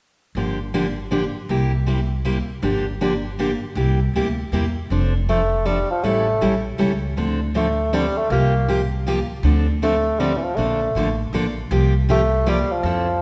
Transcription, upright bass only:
0.35 G1
1.49 C2
2.63 G1
3.75 C2
4.13 D2
4.52 E2
4.90 F1
6.03 A1
6.41 A#1
6.80 C#2
7.17 D2
8.30 C2
9.43 D2
10.57 A#1
10.95 A1
11.33 A#1
11.71 C2
12.83 F2

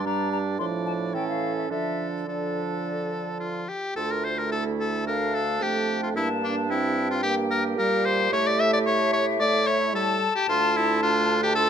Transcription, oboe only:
0.06 D5
0.60 D5
1.14 A4
1.71 A4
2.28 A4
3.40 F4
3.69 G4
3.96 A4
4.11 A#4
4.25 C5
4.38 A#4
4.52 A4
4.80 A4
5.07 A#4
5.34 A4
5.62 G4
6.03 F4
6.16 E4
6.44 D4
6.71 E4
7.11 F4
7.23 G4
7.51 A#4
7.79 A#4
8.05 C5
8.33 C#5
8.47 D5
8.60 E5
8.73 D5
8.86 C#5
9.13 C#5
9.40 D5
9.67 C#5
9.95 A4
10.35 G4
10.49 F4
10.76 E4
11.03 F4
11.43 G4
11.55 A4

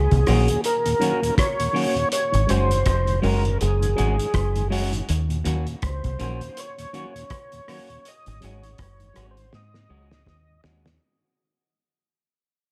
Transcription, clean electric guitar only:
0.27 A#3 C#4 F#4
1.01 A#3 C#4 F#4
1.23 muted clean electric guitar stroke
1.74 A#3 C#4 F#4
2.49 G#3 C#4 F#4
3.22 G#3 C#4 F#4
3.97 G#3 C#4 F#4
4.18 muted clean electric guitar stroke
4.70 G#3 C#4 F#4
5.44 A#3 C#4 F#4
6.19 A#3 C#4 F#4
6.93 A#3 C#4 F#4
7.16 muted clean electric guitar stroke
7.68 A#3 C#4 F#4
8.43 G#3 C#4 F#4
9.16 G#3 C#4 F#4
9.89 G#3 C#4 F#4
10.64 G#3 C#4 F#4

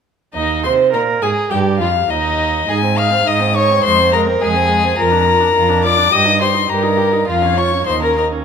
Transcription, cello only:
0.35 D#2
0.64 C3
0.94 A#2
1.22 G#2
1.51 G2
1.80 F2
2.09 D#2
2.68 G#2
3.26 G#2
3.84 F2
4.41 F2
4.98 F2
5.56 F2
6.12 G2
6.70 G2
7.28 F2
7.87 D#2

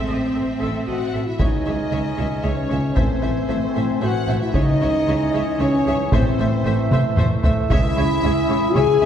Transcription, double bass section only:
0.09 A1
0.36 A1
0.61 A1
0.88 A1
1.14 A1
1.40 C#2
1.66 C#2
1.93 C#2
2.19 C#2
2.45 C#2
2.71 C#2
2.97 A1
3.24 A1
3.50 A1
3.76 A1
4.02 A1
4.28 A1
4.55 C#2
4.80 C#2
5.08 C#2
5.34 C#2
5.60 C#2
5.86 C#2
6.12 A1
6.39 A1
6.65 A1
6.91 A1
7.18 A1
7.44 A1
7.71 C#2
7.96 C#2
8.23 C#2
8.49 C#2
8.75 C#2
9.01 C#2

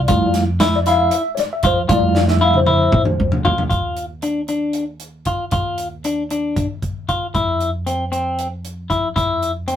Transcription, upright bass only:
0.09 F2
1.64 F2
1.90 F2
2.93 F2
3.20 F2
3.45 E2
3.71 D#2
5.52 D#2
7.35 F2
9.17 F2

